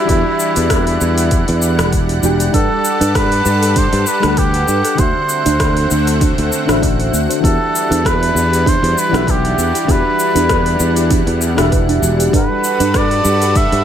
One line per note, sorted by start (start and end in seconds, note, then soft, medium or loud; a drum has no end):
0.00 0.05 E3 medium
0.00 2.50 E3 medium
0.00 2.50 G3 medium
0.00 0.06 D4 medium
0.00 2.50 D4 medium
0.00 1.90 E4 medium
0.00 0.08 F#4 medium
0.00 0.10 G4 medium
0.00 0.12 E5 loud
0.00 12.29 F#5 medium
0.05 0.22 E2 medium
0.05 1.73 E3 medium
0.05 1.73 D4 medium
0.05 1.74 F#4 medium
0.05 kick loud
0.09 1.75 G4 medium
0.09 1.76 E5 medium
0.09 open hi-hat medium
0.09 shaker soft
0.40 shaker medium
0.56 0.96 E2 medium
0.56 open hi-hat soft
0.56 shaker soft
0.70 kick loud
0.70 cross-stick medium
0.70 open hi-hat medium
0.70 shaker soft
0.87 open hi-hat soft
1.01 1.42 E2 medium
1.01 shaker medium
1.18 open hi-hat soft
1.18 shaker soft
1.31 kick loud
1.31 open hi-hat medium
1.31 shaker soft
1.48 1.80 E2 loud
1.48 open hi-hat soft
1.62 shaker medium
1.79 2.18 E1 medium
1.79 cross-stick medium
1.79 open hi-hat soft
1.79 shaker soft
1.93 kick loud
1.93 open hi-hat medium
1.93 shaker soft
2.09 open hi-hat soft
2.22 2.48 E1 medium
2.22 2.50 E3 medium
2.22 2.50 D4 medium
2.22 2.51 F#4 medium
2.22 2.51 G4 medium
2.22 2.52 G5 medium
2.22 shaker medium
2.40 open hi-hat soft
2.40 shaker soft
2.50 2.67 G2 medium
2.50 4.18 G3 medium
2.50 4.96 G3 medium
2.50 4.19 D4 medium
2.50 2.69 D4 medium
2.50 4.97 A4 medium
2.50 4.20 A4 medium
2.50 4.97 D5 medium
2.50 kick loud
2.50 open hi-hat medium
2.50 shaker soft
2.55 3.18 A4 loud
2.55 4.21 D5 medium
2.55 4.22 F#5 medium
2.85 shaker medium
3.01 3.41 G2 medium
3.01 3.09 D4 loud
3.01 open hi-hat soft
3.01 shaker soft
3.15 3.30 B4 medium
3.15 3.79 B4 loud
3.15 kick loud
3.15 cross-stick medium
3.15 open hi-hat medium
3.15 shaker soft
3.32 open hi-hat soft
3.45 3.87 G2 medium
3.45 shaker medium
3.62 3.75 A4 medium
3.62 open hi-hat soft
3.62 shaker soft
3.76 3.91 D4 medium
3.76 4.09 C5 loud
3.76 kick loud
3.76 open hi-hat medium
3.76 shaker soft
3.93 4.04 G2 loud
3.93 open hi-hat soft
4.07 4.40 B4 loud
4.07 shaker medium
4.20 4.63 D2 loud
4.20 4.94 G3 loud
4.20 4.95 D4 medium
4.20 4.31 D4 loud
4.20 4.95 A4 medium
4.20 cross-stick medium
4.20 open hi-hat soft
4.20 shaker soft
4.26 4.96 B4 medium
4.26 4.97 F#5 loud
4.37 5.01 G4 loud
4.37 4.53 B4 medium
4.37 kick loud
4.37 open hi-hat medium
4.37 shaker soft
4.54 open hi-hat soft
4.68 4.81 G2 medium
4.68 shaker medium
4.85 4.97 A4 medium
4.85 open hi-hat soft
4.85 shaker soft
4.95 6.63 D3 medium
4.95 7.41 D3 medium
4.95 7.41 A3 medium
4.95 7.41 C4 medium
4.95 6.64 D4 medium
4.95 5.14 D4 medium
4.95 6.64 F#4 medium
4.95 kick loud
4.95 open hi-hat medium
4.95 shaker soft
4.99 5.12 D2 medium
4.99 6.21 C5 loud
4.99 6.65 C5 medium
4.99 6.66 E5 medium
5.29 shaker medium
5.46 5.86 D2 medium
5.46 5.54 D4 loud
5.46 open hi-hat soft
5.46 shaker soft
5.59 5.75 D5 medium
5.59 kick loud
5.59 cross-stick medium
5.59 open hi-hat medium
5.59 shaker soft
5.77 open hi-hat soft
5.91 6.32 D2 medium
5.91 shaker medium
6.07 6.20 C5 medium
6.07 open hi-hat soft
6.07 shaker soft
6.21 6.36 D4 medium
6.21 kick loud
6.21 open hi-hat medium
6.21 shaker soft
6.38 6.49 D2 loud
6.38 open hi-hat soft
6.53 shaker medium
6.65 7.08 A1 loud
6.65 7.39 D3 loud
6.65 7.40 D4 medium
6.65 6.76 D4 loud
6.65 7.41 F#4 medium
6.65 cross-stick medium
6.65 open hi-hat soft
6.69 7.41 C5 medium
6.69 7.42 E5 loud
6.69 shaker soft
6.83 6.98 D5 medium
6.83 kick loud
6.83 open hi-hat medium
6.83 shaker soft
7.00 open hi-hat soft
7.13 7.26 D2 medium
7.13 shaker medium
7.30 7.42 C5 medium
7.30 open hi-hat soft
7.30 shaker soft
7.40 7.57 E2 loud
7.40 9.08 E3 medium
7.40 12.30 E3 medium
7.40 12.30 G3 medium
7.40 9.09 D4 medium
7.40 12.29 D4 medium
7.40 7.59 D4 medium
7.40 9.10 F#4 medium
7.40 kick loud
7.45 9.11 G4 medium
7.45 8.08 A4 loud
7.45 9.11 E5 loud
7.45 open hi-hat medium
7.45 shaker soft
7.76 shaker medium
7.91 8.31 E2 medium
7.91 7.98 D4 loud
7.91 open hi-hat soft
7.91 shaker soft
8.05 8.20 B4 medium
8.05 8.70 B4 loud
8.05 kick loud
8.05 cross-stick medium
8.05 open hi-hat medium
8.05 shaker soft
8.23 open hi-hat soft
8.35 8.77 E2 medium
8.35 shaker medium
8.52 8.65 G4 medium
8.52 open hi-hat soft
8.52 shaker soft
8.66 8.81 D4 medium
8.66 9.00 C5 loud
8.66 kick loud
8.66 open hi-hat medium
8.66 shaker soft
8.83 8.94 E2 loud
8.83 open hi-hat soft
8.98 9.32 B4 loud
8.98 shaker medium
9.09 9.53 B1 loud
9.09 9.83 E3 loud
9.09 9.84 D4 medium
9.09 9.85 F#5 medium
9.13 9.21 D4 loud
9.13 9.86 G4 medium
9.13 9.87 E5 loud
9.13 cross-stick medium
9.13 open hi-hat soft
9.13 shaker soft
9.27 9.92 G4 loud
9.27 9.42 B4 medium
9.27 kick loud
9.27 open hi-hat medium
9.27 shaker soft
9.45 open hi-hat soft
9.58 9.71 E2 medium
9.58 shaker medium
9.74 9.87 G4 medium
9.74 open hi-hat soft
9.74 shaker soft
9.85 10.01 E2 medium
9.85 11.52 E3 medium
9.85 11.53 D4 medium
9.85 10.04 D4 medium
9.85 11.54 F#4 medium
9.85 kick loud
9.89 11.55 G4 medium
9.89 11.12 B4 loud
9.89 11.56 E5 medium
9.89 open hi-hat soft
9.89 shaker soft
10.19 shaker medium
10.35 10.75 E2 medium
10.35 10.43 D4 loud
10.35 open hi-hat soft
10.35 shaker soft
10.49 10.65 B4 medium
10.49 kick loud
10.49 cross-stick medium
10.49 open hi-hat medium
10.49 shaker soft
10.66 open hi-hat soft
10.80 11.22 E2 medium
10.80 shaker medium
10.96 11.10 G4 medium
10.96 open hi-hat soft
10.96 shaker soft
11.11 11.26 D4 medium
11.11 kick loud
11.11 open hi-hat medium
11.11 shaker soft
11.27 11.59 E2 loud
11.27 open hi-hat soft
11.42 shaker medium
11.54 11.98 E1 medium
11.54 12.28 E3 medium
11.54 12.29 D4 medium
11.54 12.30 F#4 medium
11.58 11.72 E4 medium
11.58 12.31 G4 medium
11.58 12.32 E5 loud
11.58 cross-stick medium
11.58 open hi-hat soft
11.58 shaker soft
11.71 11.81 B4 medium
11.71 kick loud
11.71 open hi-hat medium
11.71 shaker soft
11.89 12.02 D4 medium
11.89 open hi-hat soft
12.02 12.27 E1 medium
12.02 shaker medium
12.19 12.33 G4 medium
12.19 open hi-hat soft
12.19 shaker soft
12.30 12.46 G2 loud
12.30 13.84 G3 medium
12.30 13.84 D4 medium
12.30 12.48 D4 medium
12.30 13.84 F#4 medium
12.30 13.84 A4 medium
12.30 13.84 B4 medium
12.30 kick loud
12.30 open hi-hat medium
12.34 13.84 B4 medium
12.34 12.98 B4 medium
12.34 13.84 F#5 loud
12.34 shaker soft
12.64 shaker medium
12.80 13.20 G2 medium
12.80 12.88 D4 loud
12.80 open hi-hat soft
12.80 shaker soft
12.94 13.10 B4 medium
12.94 13.58 D5 loud
12.94 kick loud
12.94 cross-stick medium
12.94 open hi-hat medium
12.94 shaker soft
13.11 open hi-hat soft
13.25 13.67 G2 medium
13.25 shaker medium
13.42 13.55 A4 medium
13.42 open hi-hat soft
13.42 shaker soft
13.55 13.71 D4 medium
13.55 13.84 E5 loud
13.55 kick loud
13.55 open hi-hat medium
13.55 shaker soft
13.72 13.83 G2 loud
13.72 open hi-hat soft